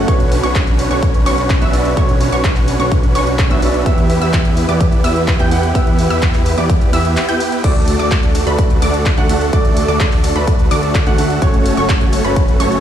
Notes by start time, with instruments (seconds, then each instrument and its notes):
Already playing: grand piano C#4 F#4
0.07 analog synth bass B1, grand piano D3 B3 F#4 C#5, supersaw synth C#4 D4 F#4 B4 C#5, synth pluck C#6, kick, closed hi-hat
0.20 closed hi-hat
0.32 open hi-hat
0.43 analog synth bass B1, supersaw synth C#4 D4 F#4 B4 C#5, synth pluck C#6, closed hi-hat
0.55 kick, clap, closed hi-hat
0.67 closed hi-hat
0.79 open hi-hat
0.90 analog synth bass B1, grand piano D3 B3 F#4 C#5, supersaw synth C#4 D4 F#4 B4 C#5, synth pluck C#6, closed hi-hat
1.03 kick, closed hi-hat
1.14 closed hi-hat
1.26 analog synth bass B1, supersaw synth C#4 D4 F#4 B4 C#5, synth pluck C#6, open hi-hat
1.38 closed hi-hat
1.50 kick, clap, open hi-hat
1.61 analog synth bass B1, grand piano B3 D4 F#4 E5, supersaw synth C#4 D4 F#4 B4 E5, synth pluck E6, closed hi-hat
1.73 grand piano B3 D4 F#4 D5, open hi-hat
1.85 closed hi-hat
1.96 grand piano D3 B3 F#4 C#5, supersaw synth C#4 D4 F#4 B4 C#5, synth pluck C#6, kick, closed hi-hat
2.09 closed hi-hat
2.21 open hi-hat
2.32 analog synth bass B1, supersaw synth C#4 D4 F#4 B4 C#5, synth pluck C#6, closed hi-hat
2.44 kick, clap, closed hi-hat
2.56 clap, open hi-hat
2.68 open hi-hat
2.79 analog synth bass B1, grand piano D3 B3 F#4 C#5, supersaw synth C#4 D4 F#4 B4 C#5, synth pluck C#6, closed hi-hat
2.92 kick, closed hi-hat
3.03 closed hi-hat
3.15 analog synth bass B1, supersaw synth C#4 D4 F#4 B4 C#5, synth pluck C#6, open hi-hat
3.27 closed hi-hat
3.39 kick, clap, closed hi-hat
3.50 analog synth bass B1, grand piano B3 D4 F#4 E5, supersaw synth C#4 D4 F#4 B4 E5, synth pluck E6, closed hi-hat
3.62 grand piano B3 D4 F#4 D5, open hi-hat
3.74 closed hi-hat
3.85 analog synth bass E2, grand piano B3 E4 G4 E5, supersaw synth B3 E4 G4 B4, synth pluck E6, kick, closed hi-hat
3.98 closed hi-hat
4.10 open hi-hat
4.21 analog synth bass E2, supersaw synth B3 E4 G4 B4 E5, synth pluck E6, closed hi-hat
4.33 kick, clap, closed hi-hat
4.45 closed hi-hat
4.57 open hi-hat
4.67 analog synth bass E2, grand piano B3 E4 G4 E5, supersaw synth B3 E4 G4 B4 D5, synth pluck D6, closed hi-hat
4.81 kick, closed hi-hat
4.92 closed hi-hat
5.04 analog synth bass E2, supersaw synth B3 E4 G4 B4 E5, synth pluck E6, open hi-hat
5.16 closed hi-hat
5.28 kick, clap, open hi-hat
5.39 analog synth bass E2, grand piano B3 E4 G4 G5, supersaw synth B3 E4 G4 B4 G5, synth pluck G6, closed hi-hat
5.51 grand piano B3 E4 G4 F#5, open hi-hat
5.63 closed hi-hat
5.74 analog synth bass E2, grand piano B3 E4 G4 E5, supersaw synth B3 E4 G4 B4 E5, synth pluck E6, kick, closed hi-hat
5.87 closed hi-hat
5.99 open hi-hat
6.10 analog synth bass E2, supersaw synth B3 E4 G4 B4 E5, synth pluck E6, closed hi-hat
6.22 kick, clap, closed hi-hat
6.34 clap, open hi-hat
6.46 open hi-hat
6.57 analog synth bass E2, grand piano B3 E4 G4 E5, supersaw synth B3 E4 G4 B4 D5, synth pluck D6, closed hi-hat
6.70 kick, closed hi-hat
6.81 closed hi-hat
6.92 analog synth bass E2, grand piano B3 E4 G4 G5, supersaw synth B3 E4 G4 B4 E5, synth pluck E6, open hi-hat
7.05 closed hi-hat
7.17 clap, closed hi-hat
7.29 supersaw synth B3 E4 G4 B4 G5, synth pluck G6, closed hi-hat
7.40 open hi-hat
7.52 closed hi-hat
7.63 analog synth bass D2, grand piano A3 D4 F#4 D5, supersaw synth A3 D4 F#4 A4 D5, synth pluck D6, kick, closed hi-hat, crash
7.76 closed hi-hat
7.88 open hi-hat, ride
7.99 analog synth bass D2, supersaw synth A3 D4 F#4 A4 D5, synth pluck D6, closed hi-hat
8.11 kick, clap, closed hi-hat
8.23 closed hi-hat
8.35 open hi-hat, ride
8.46 analog synth bass D2, grand piano A3 D4 F#4 D5, supersaw synth A3 D4 F#4 A4 B4, synth pluck B5, closed hi-hat
8.59 kick, closed hi-hat
8.70 closed hi-hat
8.82 analog synth bass D2, supersaw synth A3 D4 F#4 A4 D5, synth pluck D6, open hi-hat, ride
8.94 closed hi-hat
9.06 kick, clap, open hi-hat
9.17 analog synth bass D2, grand piano A3 D4 F#4 F#5, supersaw synth A3 D4 F#4 A4 F#5, synth pluck F#6, closed hi-hat
9.29 grand piano A3 D4 F#4 E5, open hi-hat, ride
9.41 closed hi-hat
9.52 analog synth bass D2, grand piano A3 D4 F#4 D5, supersaw synth A3 D4 D5, synth pluck D6, kick, closed hi-hat
9.65 closed hi-hat
9.77 open hi-hat, ride
9.88 analog synth bass D2, supersaw synth A3 D4 F#4 A4 D5, synth pluck D6, closed hi-hat
10.00 kick, clap, closed hi-hat
10.12 clap, open hi-hat
10.24 open hi-hat, ride
10.34 analog synth bass D2, grand piano A3 D4 F#4 D5, supersaw synth A3 D4 F#4 A4 B4, synth pluck B5, closed hi-hat
10.47 kick, closed hi-hat
10.59 closed hi-hat
10.71 analog synth bass D2, supersaw synth A3 D4 F#4 A4 D5, synth pluck D6, open hi-hat, ride
10.83 closed hi-hat
10.95 kick, clap, closed hi-hat
11.06 analog synth bass D2, grand piano A3 D4 F#4 F#5, supersaw synth A3 D4 F#4 A4 F#5, synth pluck F#6, closed hi-hat
11.18 grand piano A3 D4 F#4 E5, open hi-hat, ride
11.30 closed hi-hat
11.41 analog synth bass F#1, grand piano A3 C#4 F#4 C#5, supersaw synth A3 C#4 F#4 A4 C#5, synth pluck C#6, kick, closed hi-hat
11.54 closed hi-hat
11.66 open hi-hat, ride
11.77 analog synth bass F#1, supersaw synth A3 C#4 F#4 A4 C#5, synth pluck C#6, closed hi-hat
11.89 kick, clap, closed hi-hat
12.01 closed hi-hat
12.13 open hi-hat, ride
12.23 analog synth bass F#1, grand piano A3 C#4 F#4 C#5, supersaw synth A3 C#4 F#4 A4 B4, synth pluck B5, closed hi-hat
12.36 kick, closed hi-hat
12.48 closed hi-hat
12.60 analog synth bass F#1, supersaw synth A3 C#4 F#4 A4 C#5, synth pluck C#6, open hi-hat, ride
12.72 closed hi-hat